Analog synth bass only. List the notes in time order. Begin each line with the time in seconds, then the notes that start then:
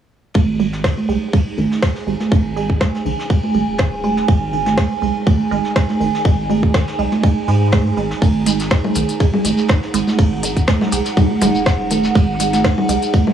0.35 G#1
1.09 B1
1.58 G#1
2.07 G#1
2.32 G#1
3.05 B1
3.55 G#1
3.68 D#1
4.28 G#1
5.02 B1
5.51 G#1
6.00 G#1
6.25 G#1
6.99 B1
7.48 G#2
7.97 G#1
8.22 G#1
8.96 B1
9.45 G#1
9.94 G#1
10.19 G#1
10.92 B1
11.42 G#1
11.55 D#1
12.15 G#1
12.89 B1